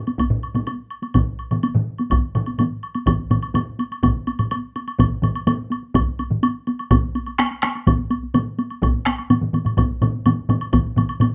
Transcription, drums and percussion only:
0.07 taiko high soft
0.07 high woodblock soft
0.19 taiko medium
0.19 taiko high medium
0.19 high woodblock soft
0.30 taiko low-mid medium
0.43 high woodblock soft
0.55 taiko low-mid medium
0.55 taiko high soft
0.55 high woodblock soft
0.67 taiko high medium
0.67 high woodblock soft
0.90 high woodblock soft
1.03 taiko high soft
1.03 high woodblock soft
1.14 taiko medium
1.14 taiko low-mid medium
1.14 taiko mid medium
1.14 taiko high medium
1.14 high woodblock soft
1.39 high woodblock soft
1.51 taiko low-mid medium
1.51 taiko mid medium
1.51 taiko high soft
1.51 high woodblock soft
1.63 taiko high medium
1.63 high woodblock soft
1.75 taiko low-mid medium
1.75 taiko mid medium
1.98 taiko high medium
1.98 high woodblock soft
2.10 taiko medium
2.10 taiko low-mid medium
2.10 taiko mid medium
2.10 taiko high medium
2.10 high woodblock medium
2.35 taiko low-mid loud
2.35 taiko mid medium
2.35 high woodblock soft
2.46 taiko high soft
2.46 high woodblock soft
2.58 taiko low-mid medium
2.58 taiko mid medium
2.58 taiko high medium
2.58 high woodblock medium
2.83 high woodblock soft
2.95 taiko high soft
2.95 high woodblock soft
3.06 taiko loud
3.06 taiko low-mid loud
3.06 taiko mid loud
3.06 taiko high medium
3.06 high woodblock medium
3.19 taiko high soft
3.30 taiko low-mid medium
3.30 taiko mid medium
3.30 taiko high soft
3.30 high woodblock medium
3.43 taiko high soft
3.43 high woodblock soft
3.54 taiko low-mid loud
3.54 taiko mid medium
3.54 taiko high medium
3.54 high woodblock medium
3.79 taiko high soft
3.79 high woodblock soft
3.92 taiko high soft
3.92 high woodblock soft
4.03 taiko medium
4.03 taiko low-mid medium
4.03 taiko mid loud
4.03 taiko high medium
4.03 high woodblock medium
4.15 taiko high soft
4.27 taiko high medium
4.27 high woodblock soft
4.39 taiko low-mid medium
4.39 taiko mid medium
4.39 taiko high soft
4.39 high woodblock soft
4.51 taiko high medium
4.51 high woodblock medium
4.76 taiko high soft
4.76 high woodblock soft
4.88 taiko high soft
4.88 high woodblock medium
4.99 taiko medium
4.99 taiko low-mid loud
4.99 taiko mid loud
4.99 taiko high medium
4.99 high woodblock medium
5.11 taiko high soft
5.23 taiko low-mid medium
5.23 taiko mid medium
5.23 taiko high soft
5.23 high woodblock medium
5.35 taiko high soft
5.35 high woodblock medium
5.47 taiko low-mid loud
5.47 taiko mid loud
5.47 taiko high medium
5.47 high woodblock medium
5.59 taiko high soft
5.70 taiko high medium
5.70 high woodblock soft
5.83 taiko high soft
5.95 taiko loud
5.95 taiko low-mid medium
5.95 taiko mid loud
5.95 taiko high medium
5.95 high woodblock medium
6.07 taiko high soft
6.19 taiko high medium
6.19 high woodblock soft
6.30 taiko low-mid medium
6.30 taiko mid medium
6.30 taiko high soft
6.43 taiko high medium
6.43 high woodblock medium
6.67 taiko high medium
6.67 high woodblock soft
6.79 taiko high soft
6.79 high woodblock soft
6.91 taiko loud
6.91 taiko low-mid loud
6.91 taiko mid loud
6.91 taiko high medium
6.91 high woodblock medium
7.03 taiko high soft
7.15 taiko high medium
7.15 high woodblock soft
7.26 taiko high soft
7.26 high woodblock soft
7.38 taiko rim medium
7.38 taiko high medium
7.38 high woodblock soft
7.51 taiko high soft
7.63 taiko rim medium
7.63 taiko high medium
7.63 high woodblock soft
7.75 taiko high soft
7.75 high woodblock soft
7.87 taiko loud
7.87 taiko low-mid medium
7.87 taiko mid loud
7.87 taiko high medium
7.87 high woodblock medium
7.99 taiko high soft
8.10 taiko high medium
8.10 high woodblock soft
8.23 taiko high soft
8.34 taiko low-mid medium
8.34 taiko mid medium
8.34 taiko high medium
8.34 high woodblock soft
8.59 taiko high medium
8.59 high woodblock soft
8.70 taiko high soft
8.70 high woodblock soft
8.82 taiko loud
8.82 taiko low-mid loud
8.82 taiko mid loud
8.82 taiko high medium
8.82 high woodblock soft
8.95 taiko high soft
9.05 taiko rim medium
9.05 taiko high medium
9.05 high woodblock soft
9.18 taiko high soft
9.18 high woodblock soft
9.30 taiko low-mid medium
9.30 taiko mid medium
9.30 taiko high medium
9.30 high woodblock medium
9.41 taiko low-mid medium
9.41 taiko mid medium
9.41 taiko high soft
9.53 taiko low-mid medium
9.53 taiko mid medium
9.53 taiko high medium
9.53 high woodblock soft
9.65 taiko low-mid medium
9.65 taiko mid medium
9.65 taiko high soft
9.65 high woodblock soft
9.77 taiko medium
9.77 taiko low-mid medium
9.77 taiko mid loud
9.77 taiko high medium
9.77 high woodblock medium
9.91 taiko high soft
10.02 taiko low-mid loud
10.02 taiko mid medium
10.02 taiko high medium
10.02 high woodblock soft
10.15 taiko high soft
10.26 taiko low-mid medium
10.26 taiko mid medium
10.26 taiko high medium
10.26 high woodblock medium
10.49 taiko low-mid loud
10.49 taiko mid loud
10.49 taiko high medium
10.49 high woodblock soft
10.61 taiko high soft
10.61 high woodblock soft
10.73 taiko loud
10.73 taiko low-mid loud
10.73 taiko mid loud
10.73 taiko high medium
10.73 high woodblock medium
10.86 taiko high soft
10.96 taiko low-mid medium
10.96 taiko mid loud
10.96 taiko high medium
10.96 high woodblock soft
11.09 taiko high soft
11.09 high woodblock soft
11.20 taiko low-mid loud
11.20 taiko mid medium
11.20 taiko high medium
11.20 high woodblock medium

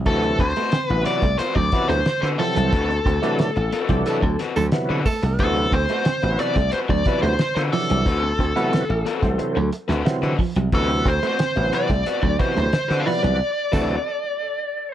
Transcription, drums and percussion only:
0.06 kick medium
0.06 closed hi-hat medium
0.23 closed hi-hat soft
0.39 kick medium
0.39 closed hi-hat medium
0.56 closed hi-hat medium
0.72 snare loud
0.72 closed hi-hat medium
1.05 closed hi-hat medium
1.22 kick medium
1.22 snare soft
1.22 closed hi-hat soft
1.39 closed hi-hat medium
1.56 kick medium
1.56 closed hi-hat soft
1.72 kick medium
1.72 snare soft
1.72 closed hi-hat medium
1.90 closed hi-hat soft
2.06 snare loud
2.06 closed hi-hat medium
2.23 snare soft
2.39 open hi-hat medium
2.56 closed hi-hat medium
2.73 kick loud
2.73 closed hi-hat medium
2.91 closed hi-hat soft
3.06 kick medium
3.06 closed hi-hat medium
3.23 closed hi-hat medium
3.39 snare loud
3.39 closed hi-hat medium
3.56 closed hi-hat soft
3.72 closed hi-hat medium
3.89 kick medium
3.89 snare soft
3.89 closed hi-hat soft
4.06 closed hi-hat medium
4.23 kick medium
4.39 snare soft
4.39 closed hi-hat medium
4.56 snare soft
4.56 closed hi-hat medium
4.72 snare loud
4.72 closed hi-hat medium
5.06 kick medium
5.06 open hi-hat medium
5.23 closed hi-hat medium
5.39 kick medium
5.39 closed hi-hat medium
5.56 closed hi-hat soft
5.72 kick medium
5.72 closed hi-hat medium
5.89 closed hi-hat medium
6.05 snare loud
6.05 closed hi-hat loud
6.22 closed hi-hat soft
6.39 closed hi-hat medium
6.56 kick medium
6.56 snare soft
6.56 closed hi-hat medium
6.72 closed hi-hat medium
6.89 kick medium
7.05 kick medium
7.05 snare soft
7.05 closed hi-hat medium
7.23 closed hi-hat soft
7.39 snare loud
7.39 closed hi-hat medium
7.56 snare soft
7.56 closed hi-hat soft
7.73 open hi-hat medium
7.90 closed hi-hat medium
8.06 kick loud
8.06 closed hi-hat loud
8.39 kick medium
8.39 closed hi-hat medium
8.57 closed hi-hat medium
8.73 snare loud
8.73 closed hi-hat medium
9.06 closed hi-hat medium
9.23 kick medium
9.23 snare soft
9.23 closed hi-hat soft
9.39 closed hi-hat medium
9.73 closed hi-hat medium
9.90 snare soft
9.90 closed hi-hat soft
10.06 snare loud
10.06 closed hi-hat medium
10.23 closed hi-hat soft
10.39 kick medium
10.39 open hi-hat medium
10.56 closed hi-hat medium
10.72 kick medium
10.72 closed hi-hat medium
10.90 closed hi-hat soft
11.06 kick medium
11.06 closed hi-hat medium
11.23 closed hi-hat medium
11.39 snare loud
11.39 closed hi-hat loud
11.56 closed hi-hat soft
11.73 closed hi-hat medium
11.89 kick medium
11.89 snare soft
11.89 closed hi-hat soft
12.06 closed hi-hat medium
12.23 kick medium
12.39 kick medium
12.39 closed hi-hat medium
12.57 closed hi-hat soft
12.73 snare loud
12.73 closed hi-hat medium
12.90 snare soft
12.90 closed hi-hat soft
13.07 open hi-hat medium
13.24 closed hi-hat medium
13.73 kick loud
13.73 snare loud
13.73 crash medium

